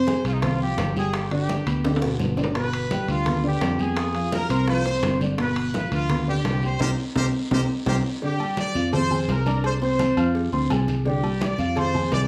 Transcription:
Already playing: F2 C5
0.07 G#3 G#4 G#5, high bongo, high conga, low timbale, short guiro
0.25 C2 F4, high timbale, short guiro
0.33 D#4
0.40 C4 F4 C5 C6, high bongo, high conga, low conga, high timbale, long guiro
0.60 F3 F4 G4 F5, high conga
0.77 G1, high bongo, low bongo, high conga, high timbale, low timbale, short guiro
0.96 G3 G4 G#4 G5, high conga, short guiro
1.14 G4, high bongo, high conga, high timbale, long guiro
1.31 D3 D4 G4 D5, high conga, high timbale
1.49 high bongo, high conga, low timbale, short guiro
1.66 D2 B3 B4 B5, high bongo, high timbale, short guiro
1.84 D3 D4 D5, high bongo, high conga, high timbale, long guiro
1.96 high timbale
2.02 B2 B3 B4, high bongo, high conga
2.19 G1, low bongo, high conga, short guiro
2.37 D3 D4 D5, low bongo, high conga, short guiro
2.44 low timbale
2.55 B2 B3 B4, high bongo, high conga, high timbale, long guiro
2.73 high conga, high timbale
2.91 G3 G4 G5, high bongo, high conga, low timbale, short guiro
3.08 D2 F4, high conga, high timbale, short guiro
3.26 B3 B4 B5, high bongo, high conga, low conga, high timbale, long guiro
3.44 D3 D4 G4 D5, high conga
3.61 F2, high bongo, low bongo, high conga, high timbale, low timbale, short guiro
3.79 B3 G#4 B4 G5, high conga, short guiro
3.97 high bongo, high conga, high timbale, long guiro
4.14 F3 F4 F5, high conga, high timbale
4.32 A#4, high bongo, high conga, low timbale, short guiro
4.49 C2 C4 C5 C6, high bongo, high timbale, short guiro
4.68 F3 F4 C5 F5, high bongo, high conga, long guiro
4.85 C3 C4 C5, high bongo, high conga, high timbale
5.03 G1, high bongo, low bongo, high conga, high timbale, low timbale, short guiro
5.21 D3 D4 D5, high bongo, high conga, short guiro
5.38 B2 B3 B4, high bongo, high timbale, long guiro
5.56 high conga, high timbale
5.73 F3 F4 F5, high bongo, high conga, low timbale, short guiro
5.92 D2 F4, high conga, high timbale, short guiro
6.09 B3 B4 B5, high bongo, high conga, low conga, high timbale, long guiro
6.27 D3 D4 G4 D5, high conga
6.45 C2, high bongo, low bongo, high conga, high timbale, low timbale, short guiro
6.62 G3 G4 C5 G5, high conga, short guiro
6.80 C2 C4 D#4 G4 A#4 C5, low bongo, high conga, high timbale, long guiro
7.15 C2 C4 D#4 G4 A#4 C5, low bongo, high conga, high timbale, long guiro
7.51 C2 C4 D#4 G4 A#4 C5, low bongo, high conga, high timbale
7.86 C2 C4 D#4 G4 A#4 C5, low bongo, high conga, high timbale, long guiro
8.22 D3 D4 G4 D5, cowbell, high conga, long guiro
8.40 G3 G4 G5, high conga, low agogo
8.57 D5, cowbell, high conga, low timbale, short guiro
8.75 F2 F3 F4 F5, cowbell, short guiro
8.93 C5, cowbell, high conga, low conga, low agogo, long guiro
9.10 G#3 G#4 G#5, high conga, low conga, low agogo
9.28 C2 A#4, cowbell, high conga, low timbale, short guiro
9.46 D4 D5 D6, cowbell, high conga, low agogo, short guiro
9.64 C5, cowbell, high conga, low agogo, long guiro
9.81 C4 C5 C6, cowbell, high conga
9.99 cowbell, high conga, low timbale, low agogo, short guiro
10.17 F2 F4 F5 F6, low agogo, short guiro
10.35 cowbell, high conga, long guiro
10.52 D2 C4 C5 C6, high conga, low agogo
10.70 C2 G#3 G#4 G#5, cowbell, high conga, low timbale, low agogo, short guiro
10.88 cowbell, high conga, short guiro
11.05 D3 D4 G4 D5, cowbell, high conga, long guiro
11.23 G3 G4 G5, high conga, low agogo
11.41 D5, cowbell, high conga, low timbale, short guiro
11.58 F2 F3 F4 F5, cowbell, high conga, short guiro
11.76 C5, cowbell, high conga, low conga, low agogo, long guiro
11.95 G#3 G#4 G#5, high conga, low conga, low agogo
12.12 C2 D5, cowbell, high conga, low timbale, short guiro

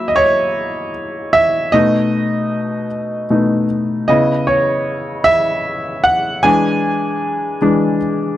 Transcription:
Already playing: F#3 A#3 E4 E5
0.08 D#5
0.16 C#5
1.33 E5
1.72 B2 A3 D#4 D#5
3.30 B2 A3 D#4
4.08 C#3 B3 E4 D#5
4.47 C#5
5.24 E5
6.04 F#5
6.43 E3 G#3 D4 G#5
7.61 E3 G#3 D4

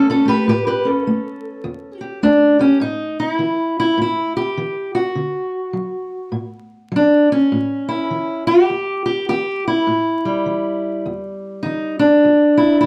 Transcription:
Already playing: A3
0.10 C#4 A4
0.25 A3 G4 B4
0.48 A2 G4 B4
0.67 G4 B4
0.85 C#4 A4
1.07 A3
1.64 E2
2.01 G4
2.23 A3 D4
2.59 C#4 G4
2.80 A2 D#4
3.20 E4
3.39 E3
3.80 E4
3.97 A2
4.02 E4
4.37 G4
4.57 E3
4.95 F#4
5.15 D3
5.73 F#3
6.32 A2
6.92 F#3
6.96 D4
7.32 C#4
7.52 A2
7.89 E4
8.11 E3
8.47 G4
8.70 E2
9.06 G4
9.29 E3 G4
9.68 E4
9.87 A2
10.25 G3
10.46 E3
11.06 E2
11.63 E3 D#4
11.99 D4
12.25 E2
12.58 E4
12.81 E4

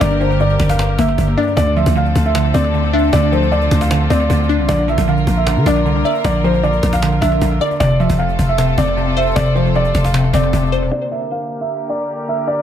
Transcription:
Already playing: D3 A#3 D4 G4 A#4
0.01 G1 G2 D5, cajon bass
0.11 cajon slap
0.20 D3 C5, cajon slap
0.31 cajon slap
0.40 G2 D5, cajon slap
0.49 cajon slap
0.60 G1, cajon bass, cajon slap
0.69 F5, cajon bass
0.79 G2, cajon slap
0.89 cajon slap
0.99 G1 A#3 E5, cajon bass
1.08 cajon slap
1.18 G1 G2, cajon bass
1.37 D4 D5, cajon slap
1.42 cajon slap
1.47 cajon slap
1.52 cajon slap
1.57 D2 D3 C4 F4 A4 D5, cajon bass
1.66 cajon slap
1.76 F3 E5, cajon slap
1.86 D2, cajon bass
1.96 D3 F5, cajon slap
2.05 cajon slap
2.15 D2, cajon bass
2.25 E5, cajon slap
2.35 D3, cajon slap
2.45 cajon slap
2.54 D2 C4 D5, cajon bass
2.64 cajon slap
2.74 D3, cajon slap
2.93 D4 E5, cajon slap
2.98 cajon slap
3.03 cajon slap
3.08 cajon slap
3.13 D2 D3 D5, cajon bass
3.22 cajon slap
3.32 F3 C5, cajon slap
3.42 cajon slap
3.52 D3 D5, cajon slap
3.61 cajon slap
3.71 D2, cajon bass, cajon slap
3.81 F5, cajon bass
3.91 D3, cajon slap
4.00 cajon slap
4.10 D2 C4 D5, cajon bass
4.20 cajon slap
4.30 D2 D3, cajon bass
4.36 cajon slap
4.43 cajon slap
4.49 D4, cajon slap
4.59 C2
4.68 A#1 D3 A#3 A#4 D5, cajon bass
4.78 cajon slap
4.88 F3 E5, cajon slap
4.98 A#1, cajon bass
5.07 D3 F5, cajon slap
5.17 cajon slap
5.27 A#1, cajon bass
5.37 E5, cajon slap
5.46 D3, cajon slap
5.56 D3, cajon slap
5.66 A#1 D4 D5, cajon bass
5.76 cajon slap
5.85 C2 D3, cajon slap
6.05 D5 E5, cajon slap
6.10 cajon slap
6.15 cajon slap
6.20 cajon slap
6.24 A#1 D3 D5, cajon bass
6.34 cajon slap
6.44 F3 C5, cajon slap
6.54 cajon slap
6.63 D3 D5, cajon slap
6.73 cajon slap
6.83 A#1, cajon bass, cajon slap
6.93 F5, cajon bass
7.02 D3, cajon slap
7.12 cajon slap
7.21 A#1 D4 E5, cajon bass
7.32 cajon slap
7.41 A#1 D3, cajon bass
7.61 D5, cajon slap
7.66 cajon slap
7.71 cajon slap
7.75 cajon slap
7.80 F1 C3 A3 F4 A4 D5, cajon bass
7.90 cajon slap
8.00 F3 E5, cajon slap
8.10 F1, cajon bass
8.18 C3 F5, cajon slap
8.29 cajon slap
8.39 F1, cajon bass
8.49 E5, cajon slap
8.58 C3, cajon slap
8.68 cajon slap
8.78 F1 C4 D5, cajon bass
8.87 cajon slap
8.97 C3, cajon slap
9.17 C5 E5, cajon slap
9.22 cajon slap
9.26 cajon slap
9.31 cajon slap
9.36 F1 C3 D5, cajon bass
9.46 cajon slap
9.55 F3 C5, cajon slap
9.66 cajon slap
9.75 C3 D5, cajon slap
9.85 cajon slap
9.95 F1, cajon bass, cajon slap
10.04 F5, cajon bass
10.14 C3, cajon slap
10.24 cajon slap
10.33 F1 C4 D5, cajon bass
10.43 cajon slap
10.53 F1 C3, cajon bass
10.60 cajon slap
10.66 cajon slap
10.72 C5, cajon slap
10.82 E1
10.92 D3 A#3 G4 A#4 D5
11.11 E5
11.31 F5
11.61 E5
11.89 D5
12.28 E5
12.47 D5

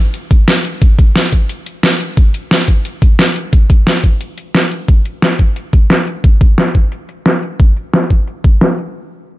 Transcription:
0.14 closed hi-hat
0.31 kick, closed hi-hat
0.48 snare, closed hi-hat
0.65 closed hi-hat
0.82 kick, closed hi-hat
0.99 kick, closed hi-hat
1.16 snare, closed hi-hat
1.32 kick, closed hi-hat
1.49 closed hi-hat
1.66 closed hi-hat
1.83 snare, closed hi-hat
2.00 closed hi-hat
2.17 kick, closed hi-hat
2.34 closed hi-hat
2.51 snare, closed hi-hat
2.68 kick, closed hi-hat
2.85 closed hi-hat
3.02 kick, closed hi-hat
3.19 snare, closed hi-hat
3.36 closed hi-hat
3.53 kick, closed hi-hat
3.70 kick, closed hi-hat
3.87 snare, closed hi-hat
4.04 kick, closed hi-hat
4.21 closed hi-hat
4.38 closed hi-hat
4.55 snare, closed hi-hat
4.71 closed hi-hat
4.88 kick, closed hi-hat
5.05 closed hi-hat
5.22 snare, closed hi-hat
5.39 kick, closed hi-hat
5.56 closed hi-hat
5.73 kick, closed hi-hat
5.90 snare, closed hi-hat
6.07 closed hi-hat
6.24 kick, closed hi-hat
6.41 kick, closed hi-hat
6.58 snare, closed hi-hat
6.75 kick, closed hi-hat
6.92 closed hi-hat
7.09 closed hi-hat
7.26 snare, closed hi-hat
7.43 closed hi-hat
7.60 kick, closed hi-hat
7.77 closed hi-hat
7.94 snare, closed hi-hat
8.10 kick, closed hi-hat
8.27 closed hi-hat
8.44 kick
8.61 snare, closed hi-hat
8.78 closed hi-hat

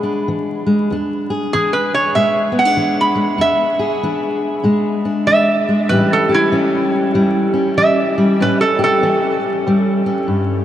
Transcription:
Already playing: B2 G#3 G#4
0.03 D4
0.28 E3
0.66 G#3
0.91 E2 D4
1.30 G#4
1.53 E3 D4 G#4
1.73 B4
1.94 C#5
2.15 B2 G#3 E5
2.52 B3
2.59 F#5
2.65 D4
2.77 E3
3.01 B5
3.16 G#3
3.38 E2 D4 E5
3.79 G#4
4.03 E3 D4
4.63 B2 G#3
5.05 D4
5.27 E3 E5
5.69 G#3
5.89 A2 E3 G3 C#4 G4 B4
6.13 A4
6.29 G4
6.34 E4
6.52 E3 C#4
7.14 E2 G3
7.54 C#4
7.77 E3 E5
8.18 G3
8.40 A2 C#4 B4
8.61 A4
8.79 G4
8.84 A4
9.03 E3 C#4
9.67 E2 G3
10.06 C#4
10.28 G2

